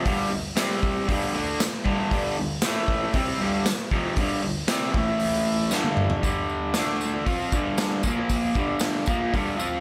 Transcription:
0.05 G2 D3 G3, kick, open hi-hat
0.31 G2 D3
0.56 C3 G3 C4, snare, open hi-hat, tambourine
0.83 kick
1.08 G2 D3 G3, kick, open hi-hat
1.34 D3 A3 D4
1.60 muted overdriven electric guitar stroke, snare, open hi-hat, tambourine
1.84 G2 D3 G3, kick
2.11 G2 D3 G3, kick, open hi-hat
2.39 G2 D3
2.62 A2 E3, snare, open hi-hat, tambourine
2.66 A3
2.88 kick
3.13 C3 G3 C4, kick, open hi-hat
3.40 G2 D3 G3
3.66 snare, open hi-hat, tambourine
3.91 F2 C3 F3, kick
4.16 G2 D3 G3, kick, open hi-hat
4.43 G2 D3
4.68 C3 G3 C4, snare, open hi-hat, tambourine
4.94 A2 E3 A3, kick
5.20 open hi-hat
5.70 G2 D3 G3, snare, tambourine
5.84 high tom
5.97 mid tom
6.10 floor tom
6.22 G2 D3 G3, kick, open hi-hat, tambourine
6.49 tambourine
6.74 D3 A3 D4, snare, open hi-hat, tambourine
7.01 tambourine
7.25 F3 C4 F4, kick, open hi-hat
7.52 G2 D3 G3, kick, tambourine
7.78 snare, open hi-hat, tambourine
8.03 A#2 F3 A#3, kick, tambourine
8.29 kick, open hi-hat, tambourine
8.54 G2 D3 G3, kick, tambourine
8.79 snare, open hi-hat, tambourine
9.06 A#2 F3 A#3, kick, tambourine
9.32 G2 D3 G3, kick, open hi-hat
9.57 F3 C4 F4, tambourine

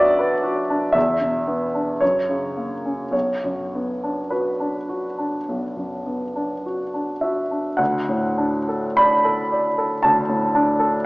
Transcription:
Already playing: B1 F#2 B3 D4 F#4 D5 E5 F#5
0.19 B4
0.44 F#4
0.70 D4
0.92 E2 E5
1.21 B2
1.48 B3
1.75 D4
2.00 F#2 C#5
2.29 C#3
2.57 A#3
2.86 C#4
3.11 B1 C#5
3.44 F#2
3.75 B3
4.03 D4
4.30 F#4 B4
4.60 D4
4.89 F#4
5.18 D4
5.49 B1
5.76 F#2
6.07 B3
6.36 D4
6.66 F#4
6.94 D4
7.21 F#4 E5
7.51 D4
7.77 D2 F#5
8.09 A2
8.38 D4
8.69 A4
8.97 D5 B5
9.25 A4
9.52 D5
9.78 A4
10.03 D2 A5
10.29 A2
10.55 D4
10.79 A4

